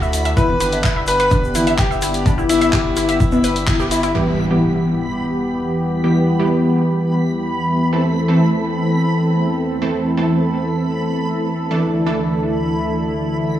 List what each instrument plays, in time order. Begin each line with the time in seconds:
Already playing: sub bass D2, analog synth pad D3 D4 E4 A4, grand piano F#4, synth texture B5
0.02 synth arpeggio sound E5, shaker
0.13 open hi-hat, cowbell, shaker
0.25 synth arpeggio sound E5, closed hi-hat, shaker
0.37 sub bass G1, analog synth pad B3 G4, synth arpeggio sound E4, grand piano B4, kick, closed hi-hat, shaker
0.50 high conga
0.60 synth arpeggio sound B4, open hi-hat, shaker
0.72 closed hi-hat, cowbell, shaker
0.84 synth arpeggio sound E4, kick, clap, closed hi-hat, shaker
0.96 synth arpeggio sound E5
1.07 grand piano B4, open hi-hat, shaker
1.20 synth arpeggio sound B4, closed hi-hat, shaker
1.31 synth arpeggio sound D4, kick, closed hi-hat, shaker
1.44 shaker
1.55 synth arpeggio sound E4, open hi-hat, high conga, shaker
1.67 synth arpeggio sound E5, closed hi-hat, cowbell, shaker
1.78 grand piano G4, kick, clap, closed hi-hat, shaker
1.91 synth arpeggio sound E5, shaker
2.02 synth arpeggio sound E4, open hi-hat, shaker
2.14 closed hi-hat, shaker
2.26 synth arpeggio sound D4, kick, closed hi-hat, shaker
2.38 synth arpeggio sound E4, shaker
2.49 grand piano E4, open hi-hat, shaker
2.61 synth arpeggio sound E5, closed hi-hat, cowbell, shaker
2.73 synth arpeggio sound G4, kick, clap, closed hi-hat, shaker
2.96 synth arpeggio sound E4, open hi-hat, shaker
3.09 synth arpeggio sound E5, closed hi-hat, shaker
3.20 kick, closed hi-hat, shaker
3.32 synth arpeggio sound B3, cowbell, shaker
3.44 synth arpeggio sound B4, open hi-hat, shaker
3.56 closed hi-hat, shaker
3.67 synth arpeggio sound E4, kick, clap, closed hi-hat, shaker
3.79 synth arpeggio sound G4, shaker
3.91 synth arpeggio sound E4, open hi-hat, cowbell, shaker
4.03 synth arpeggio sound E4, closed hi-hat, shaker
4.15 analog synth pad E2 E3 B3 G4, supersaw synth E3 G3 B3 G4, synth texture B5, impact
4.51 supersaw synth E3 G3 B3 G4
6.04 supersaw synth E3 G3 B3 G4
6.39 supersaw synth E3 G3 B3 G4
7.93 analog synth pad E2 C4 A4, supersaw synth E3 A3 C4 A4
8.28 supersaw synth E3 A3 C4 A4
9.82 supersaw synth E3 A3 C4 A4
10.17 supersaw synth E3 A3 C4 A4
11.71 analog synth pad D2 D3 E4, supersaw synth E3 A3 D4 A4
12.06 supersaw synth E3 A3 D4 A4